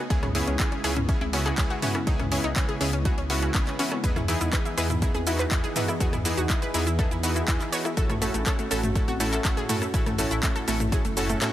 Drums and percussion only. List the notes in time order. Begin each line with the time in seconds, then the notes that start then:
0.10 kick, closed hi-hat
0.23 cross-stick, closed hi-hat, mid tom
0.35 open hi-hat
0.47 closed hi-hat
0.59 kick, clap, closed hi-hat
0.72 closed hi-hat
0.84 open hi-hat
0.97 closed hi-hat, mid tom
1.09 kick, closed hi-hat
1.21 closed hi-hat, high conga
1.33 open hi-hat
1.46 clap, closed hi-hat
1.58 kick, clap, closed hi-hat
1.70 closed hi-hat
1.82 mid tom, open hi-hat
1.95 cross-stick, closed hi-hat
2.07 kick, closed hi-hat
2.20 cross-stick, closed hi-hat, mid tom
2.32 open hi-hat
2.44 closed hi-hat
2.56 kick, clap, closed hi-hat
2.69 closed hi-hat
2.81 open hi-hat
2.93 closed hi-hat
3.05 kick, closed hi-hat
3.18 closed hi-hat
3.30 open hi-hat
3.42 closed hi-hat
3.54 kick, clap, closed hi-hat
3.67 clap, closed hi-hat
3.79 open hi-hat
3.92 cross-stick, closed hi-hat, high conga
4.04 kick, closed hi-hat, shaker
4.16 cross-stick, closed hi-hat, mid tom, shaker
4.28 open hi-hat, shaker
4.41 closed hi-hat, shaker
4.53 kick, clap, closed hi-hat, shaker
4.65 closed hi-hat, shaker
4.78 open hi-hat, shaker
4.90 closed hi-hat, mid tom, shaker
5.02 kick, closed hi-hat, shaker
5.15 closed hi-hat, high conga, shaker
5.27 open hi-hat, shaker
5.39 clap, closed hi-hat, shaker
5.51 kick, clap, closed hi-hat, shaker
5.64 closed hi-hat, shaker
5.76 mid tom, open hi-hat, shaker
5.88 cross-stick, closed hi-hat, shaker
6.00 kick, closed hi-hat, shaker
6.13 cross-stick, closed hi-hat, mid tom, shaker
6.25 open hi-hat, shaker
6.38 closed hi-hat, shaker
6.50 kick, clap, closed hi-hat, shaker
6.62 closed hi-hat, shaker
6.74 open hi-hat, shaker
6.87 closed hi-hat, shaker
6.99 kick, closed hi-hat, shaker
7.11 closed hi-hat, shaker
7.23 open hi-hat, shaker
7.36 closed hi-hat, shaker
7.48 kick, clap, closed hi-hat, shaker
7.61 clap, closed hi-hat, shaker
7.73 open hi-hat, shaker
7.85 cross-stick, closed hi-hat, shaker
7.97 kick, closed hi-hat, shaker
8.10 cross-stick, closed hi-hat, mid tom, shaker
8.22 open hi-hat, shaker
8.34 closed hi-hat, shaker
8.46 kick, clap, closed hi-hat, shaker
8.59 closed hi-hat, shaker
8.71 open hi-hat, shaker
8.83 closed hi-hat, mid tom, shaker
8.96 kick, closed hi-hat, shaker
9.08 closed hi-hat, high conga, shaker
9.20 open hi-hat, shaker
9.33 clap, closed hi-hat, shaker
9.45 kick, clap, closed hi-hat, shaker
9.57 closed hi-hat, shaker
9.69 mid tom, open hi-hat, shaker
9.82 cross-stick, closed hi-hat, shaker
9.94 kick, closed hi-hat, shaker
10.06 cross-stick, closed hi-hat, mid tom, shaker
10.19 open hi-hat, shaker
10.31 closed hi-hat, shaker
10.43 kick, clap, closed hi-hat, shaker
10.56 closed hi-hat, shaker
10.68 open hi-hat, high conga, shaker
10.80 closed hi-hat, mid tom, shaker
10.92 kick, closed hi-hat, shaker
11.05 closed hi-hat, shaker
11.17 open hi-hat, shaker
11.29 closed hi-hat, shaker
11.42 snare, clap, closed hi-hat, shaker